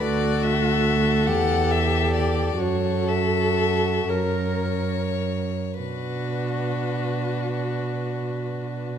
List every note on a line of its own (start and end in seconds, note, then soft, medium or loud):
0.02 1.29 D2 medium
0.02 1.28 F#4 medium
0.02 2.56 A4 medium
0.02 0.44 D5 medium
0.43 1.28 E5 medium
1.26 2.60 E2 medium
1.26 2.60 G4 medium
1.26 1.73 F#5 medium
1.71 2.13 E5 medium
2.14 2.62 D5 medium
2.60 4.07 F#2 medium
2.60 4.11 F#4 medium
2.60 4.12 A4 medium
2.60 3.09 C#5 medium
3.08 4.11 E5 medium
4.10 5.52 F#2 soft
4.10 4.94 A#4 medium
4.10 5.55 A#4 soft
4.10 5.80 C#5 medium
5.81 8.95 B2 soft
5.81 8.95 D4 soft
5.81 8.95 F#4 soft
5.81 8.95 B4 medium